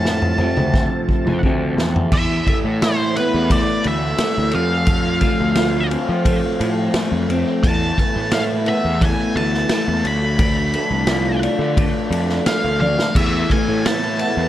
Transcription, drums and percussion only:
0.05 snare
0.22 floor tom
0.38 floor tom
0.57 mid tom
0.74 kick, snare
1.09 kick
1.27 mid tom
1.43 kick
1.78 snare
1.96 floor tom
2.12 kick, crash
2.47 kick, ride
2.82 snare, ride
3.16 ride
3.50 kick, ride
3.84 ride
4.18 snare, ride
4.52 ride
4.87 kick, ride
5.21 kick, ride
5.55 snare, ride
5.91 ride
6.25 kick, ride
6.61 ride
6.94 snare, ride
7.30 ride
7.64 kick, ride
7.98 kick, ride
8.32 snare, ride
8.66 ride
9.01 kick, ride
9.37 ride
9.54 snare
9.69 snare, ride
10.05 ride
10.39 kick, ride
10.74 ride
11.07 snare, ride
11.43 ride
11.77 kick, ride
12.12 ride
12.29 snare
12.46 snare, ride
12.82 high tom
12.99 snare
13.15 kick, crash
13.50 kick, ride
13.86 snare, ride
14.19 ride

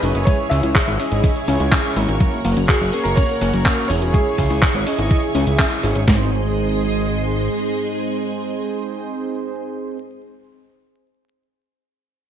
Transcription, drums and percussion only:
0.03 open hi-hat
0.15 closed hi-hat
0.27 kick, closed hi-hat
0.51 open hi-hat
0.63 closed hi-hat
0.75 kick, clap, closed hi-hat
1.00 open hi-hat
1.12 closed hi-hat
1.24 kick, closed hi-hat
1.36 closed hi-hat
1.48 open hi-hat
1.60 closed hi-hat
1.72 kick, clap, closed hi-hat
1.96 open hi-hat
2.09 closed hi-hat
2.20 kick, closed hi-hat
2.45 open hi-hat
2.57 closed hi-hat
2.69 kick, clap, closed hi-hat
2.93 open hi-hat
3.05 closed hi-hat
3.17 kick, closed hi-hat
3.29 closed hi-hat
3.41 open hi-hat
3.53 closed hi-hat
3.66 kick, clap, closed hi-hat
3.90 open hi-hat
4.02 closed hi-hat
4.14 kick, closed hi-hat
4.38 kick, open hi-hat
4.50 open hi-hat
4.62 kick, clap, closed hi-hat
4.87 open hi-hat
4.99 closed hi-hat
5.11 kick, closed hi-hat
5.23 closed hi-hat
5.35 open hi-hat
5.47 closed hi-hat
5.59 kick, clap, closed hi-hat
5.71 closed hi-hat
5.83 open hi-hat
5.95 closed hi-hat
6.08 kick, snare, open hi-hat

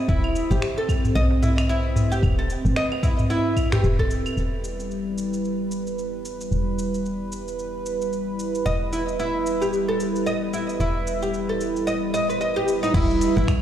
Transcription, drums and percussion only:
0.08 kick, cabasa
0.24 claves
0.36 cabasa
0.51 darbuka ka, cabasa
0.62 finger snap, cabasa
0.77 darbuka tek
0.89 kick, cabasa, claves
1.04 darbuka dum, cabasa
1.16 cabasa
1.31 darbuka tek
1.43 darbuka dum, cabasa
1.58 finger snap, cabasa, claves
1.70 cabasa
1.96 darbuka dum, cabasa
2.12 darbuka ka, darbuka tek, cabasa
2.23 kick, cabasa, claves
2.50 cabasa
2.65 darbuka ka, cabasa
2.76 finger snap, cabasa
2.92 darbuka tek, claves
3.03 kick, cabasa
3.19 darbuka dum, cabasa
3.30 darbuka tek, cabasa
3.57 kick, cabasa, claves
3.72 finger snap, darbuka tek, darbuka dum, cabasa
3.84 cabasa
3.99 kick
4.11 cabasa
4.26 cabasa, claves
4.38 cabasa
4.64 cabasa
4.80 cabasa
4.91 cabasa
5.18 cabasa
5.33 cabasa
5.45 cabasa
5.71 cabasa
5.87 cabasa
5.98 cabasa
6.25 cabasa
6.41 cabasa
6.52 cabasa
6.79 cabasa
6.94 cabasa
7.06 cabasa
7.32 cabasa
7.48 cabasa
7.59 cabasa
7.86 cabasa
8.02 cabasa
8.13 cabasa
8.39 cabasa
8.55 cabasa
8.66 cabasa
8.93 cabasa
9.08 cabasa
9.20 cabasa
9.46 cabasa
9.62 cabasa
9.73 cabasa
10.00 cabasa
10.16 cabasa
10.27 cabasa
10.54 cabasa
10.69 cabasa
10.80 cabasa
11.07 cabasa
11.23 cabasa
11.34 cabasa
11.61 cabasa
11.76 cabasa
11.88 cabasa
12.14 cabasa
12.30 cabasa
12.41 cabasa
12.68 cabasa
12.84 cabasa
12.94 kick, crash, cabasa
13.11 cabasa
13.21 open hi-hat, cabasa
13.36 darbuka ka, darbuka tek, cabasa
13.48 finger snap, kick, cabasa, claves

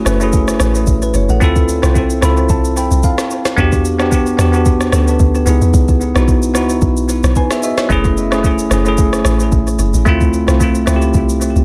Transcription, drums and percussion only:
0.06 cross-stick, shaker
0.21 shaker
0.33 kick, shaker
0.48 cross-stick, shaker
0.60 cross-stick, shaker
0.75 shaker
0.87 kick, shaker
1.02 shaker
1.14 shaker
1.29 shaker
1.41 kick, shaker
1.56 kick, shaker
1.69 shaker
1.83 cross-stick, shaker
1.95 kick, shaker
2.10 shaker
2.22 cross-stick, shaker
2.37 shaker
2.49 kick, shaker
2.65 shaker
2.77 shaker
2.91 shaker
3.03 kick, shaker
3.18 cross-stick, snare, shaker
3.30 shaker
3.45 cross-stick, snare, shaker
3.58 kick, shaker
3.72 kick, shaker
3.85 shaker
3.99 cross-stick, shaker
4.12 kick, shaker
4.26 shaker
4.39 cross-stick, shaker
4.53 shaker
4.66 kick, shaker
4.81 cross-stick, shaker
4.92 cross-stick, shaker
5.08 shaker
5.20 kick, shaker
5.35 shaker
5.47 shaker
5.62 shaker
5.74 kick, shaker
5.88 kick, shaker
6.01 shaker
6.16 cross-stick, shaker
6.28 kick, shaker
6.43 shaker
6.55 cross-stick, shaker
6.69 shaker
6.81 kick, shaker
6.97 shaker
7.09 shaker
7.24 cross-stick, shaker
7.36 kick, shaker
7.51 cross-stick, snare, shaker
7.63 shaker
7.78 cross-stick, snare, shaker
7.90 kick, shaker
8.04 kick, shaker
8.17 shaker
8.32 cross-stick, shaker
8.44 kick, shaker
8.59 shaker
8.71 cross-stick, shaker
8.86 shaker
8.98 kick, shaker
9.13 cross-stick, shaker
9.25 cross-stick, shaker
9.40 shaker
9.52 kick, shaker
9.67 shaker
9.79 shaker
9.94 shaker
10.06 kick, shaker
10.21 kick, shaker
10.33 shaker
10.48 cross-stick, shaker
10.60 kick, shaker
10.75 shaker
10.87 cross-stick, shaker
11.02 shaker
11.14 kick, shaker
11.29 shaker
11.41 shaker
11.56 shaker

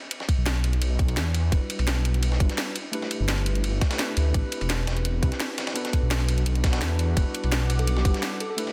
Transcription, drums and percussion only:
0.11 closed hi-hat, ride
0.20 snare
0.29 kick, closed hi-hat, ride
0.46 snare, closed hi-hat, ride
0.56 ride
0.64 closed hi-hat, ride
0.73 closed hi-hat
0.82 closed hi-hat, ride
0.99 kick, closed hi-hat, ride
1.08 closed hi-hat, ride
1.17 snare, closed hi-hat, ride
1.34 closed hi-hat, ride
1.52 kick, closed hi-hat, ride
1.70 closed hi-hat, ride
1.79 ride
1.87 snare, closed hi-hat, ride
2.05 closed hi-hat, ride
2.14 closed hi-hat
2.23 closed hi-hat, ride
2.32 snare
2.40 kick, closed hi-hat, ride
2.49 snare, closed hi-hat
2.58 snare, closed hi-hat, open hi-hat
2.75 closed hi-hat, ride
2.93 closed hi-hat, ride
3.02 snare
3.11 closed hi-hat, ride
3.28 snare, closed hi-hat, ride
3.38 ride
3.46 closed hi-hat, ride
3.55 closed hi-hat
3.64 closed hi-hat, ride
3.81 kick, snare, closed hi-hat, ride
3.91 snare, closed hi-hat, ride
3.99 snare, closed hi-hat, ride
4.17 closed hi-hat, ride
4.34 kick, closed hi-hat, ride
4.52 closed hi-hat, ride
4.61 ride
4.70 snare, closed hi-hat, ride
4.87 snare, closed hi-hat, ride
4.97 closed hi-hat
5.05 closed hi-hat, ride
5.23 kick, closed hi-hat, ride
5.32 snare, closed hi-hat
5.40 snare, closed hi-hat, open hi-hat
5.58 snare, closed hi-hat, ride
5.67 snare, ride
5.76 closed hi-hat, ride
5.85 snare, closed hi-hat
5.93 kick, closed hi-hat, ride
6.11 snare, closed hi-hat, ride
6.20 ride
6.28 closed hi-hat, ride
6.38 closed hi-hat
6.46 closed hi-hat, ride
6.55 closed hi-hat
6.64 kick, snare, closed hi-hat, ride
6.73 snare, closed hi-hat, ride
6.81 snare, closed hi-hat, ride
6.99 closed hi-hat, ride
7.17 kick, closed hi-hat, ride
7.34 closed hi-hat, ride
7.44 ride
7.52 snare, closed hi-hat, ride
7.70 closed hi-hat, ride
7.79 closed hi-hat
7.87 closed hi-hat, ride
7.97 snare
8.05 kick, closed hi-hat, ride
8.14 snare, closed hi-hat
8.23 snare, closed hi-hat, open hi-hat
8.40 closed hi-hat, ride
8.58 closed hi-hat, ride
8.67 snare

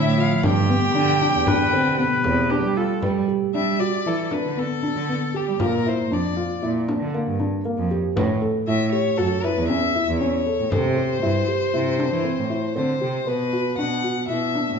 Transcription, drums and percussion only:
0.43 frame drum
0.95 frame drum
1.21 frame drum
1.47 frame drum
1.99 frame drum
2.24 frame drum
3.02 frame drum
4.31 frame drum
4.58 frame drum
5.09 frame drum
5.34 frame drum
5.60 frame drum
6.89 frame drum
7.14 frame drum
7.65 frame drum
7.91 frame drum
8.17 frame drum
9.44 frame drum
9.69 frame drum
10.21 frame drum
10.46 frame drum
10.72 frame drum
10.97 frame drum
11.23 frame drum
12.00 frame drum
12.77 frame drum

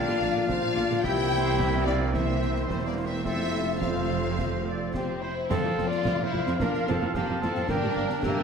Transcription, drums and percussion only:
0.08 snare
0.22 snare
0.49 concert bass drum, snare
0.77 snare
0.90 snare
1.04 concert bass drum, snare
1.32 snare
1.46 snare
1.59 concert bass drum, snare
1.87 snare
2.14 concert bass drum, snare
2.42 snare
2.56 snare
2.69 concert bass drum, snare
3.25 concert bass drum, snare
3.81 concert bass drum, snare
4.39 concert bass drum, snare
4.94 concert bass drum, snare
5.51 concert bass drum, snare, crash
5.78 snare
5.92 snare
6.05 concert bass drum, snare
6.46 snare
6.60 concert bass drum, snare
6.74 snare
6.87 snare
7.14 concert bass drum, snare
7.42 snare
7.55 snare
7.68 concert bass drum, snare
8.09 snare
8.23 concert bass drum, snare

